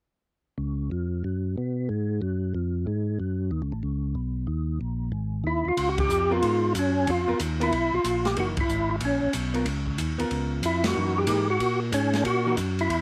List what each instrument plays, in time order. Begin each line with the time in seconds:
0.58 tonewheel organ C#2
0.91 tonewheel organ F2
1.24 tonewheel organ F#2
1.58 tonewheel organ B2
1.89 tonewheel organ G#2
2.22 tonewheel organ F#2
2.55 tonewheel organ F2
2.87 tonewheel organ G#2
3.20 tonewheel organ F#2
3.51 tonewheel organ D#2
3.62 tonewheel organ C#2
3.72 tonewheel organ A1
3.83 tonewheel organ C#2
4.15 tonewheel organ B1
4.47 tonewheel organ D#2
4.81 tonewheel organ A#1
5.12 tonewheel organ G#1
5.44 tonewheel organ D#2 E4
5.65 tonewheel organ D#2 F4
5.77 tonewheel organ C#2, kick, ride
5.89 tonewheel organ F#4
5.98 tonewheel organ G4, kick, ride
6.09 tonewheel organ F2, hi-hat pedal
6.30 hollow-body jazz guitar B3 F4 A#4, tonewheel organ F4
6.42 tonewheel organ G#2, kick, ride
6.75 tonewheel organ F#2, kick, hi-hat pedal, ride
6.79 tonewheel organ C#4
7.07 tonewheel organ F2 F4, kick, ride
7.28 tonewheel organ F2, hollow-body jazz guitar B3 F4 A#4
7.39 tonewheel organ D#2, kick, hi-hat pedal, ride
7.60 hollow-body jazz guitar B3 F4 A#4, tonewheel organ E4, ride
7.72 tonewheel organ B1, kick, ride
7.93 tonewheel organ B1 F4
8.04 tonewheel organ A#1, kick, hi-hat pedal, ride
8.25 tonewheel organ G4, snare, ride
8.36 tonewheel organ F#1 F#4, hollow-body jazz guitar E3 A#3 D#4, kick, ride
8.57 tonewheel organ F#1 E4, kick, ride
8.68 tonewheel organ G#1, hi-hat pedal
8.91 tonewheel organ E4
9.00 tonewheel organ A#1, kick, ride
9.05 tonewheel organ C#4
9.22 tonewheel organ A#1
9.33 tonewheel organ B1, kick, hi-hat pedal, ride
9.54 hollow-body jazz guitar B3 F4 A#4, ride
9.66 tonewheel organ C#2, kick, ride
9.87 kick
9.98 tonewheel organ D#2, kick, hi-hat pedal, ride
10.18 tonewheel organ D#2, hollow-body jazz guitar B3 F4 A#4, ride
10.31 tonewheel organ C#2, kick, ride
10.62 tonewheel organ F2 E4, kick, hi-hat pedal, ride
10.84 tonewheel organ F#4, snare, ride
10.94 tonewheel organ F#2, hollow-body jazz guitar E3 A#3 D#4
11.18 tonewheel organ G4
11.27 tonewheel organ G#2, hollow-body jazz guitar E3 A#3 D#4, kick, hi-hat pedal, ride
11.50 tonewheel organ F#4
11.60 tonewheel organ A#2, kick, ride
11.92 tonewheel organ G#2 C#4, kick, hi-hat pedal, ride
12.13 snare, ride
12.24 tonewheel organ A#2 F#4, kick, ride
12.46 hollow-body jazz guitar E3 A#3 D#4
12.57 tonewheel organ F#2, kick, hi-hat pedal, ride
12.79 tonewheel organ E4, ride
12.90 tonewheel organ E2, kick, ride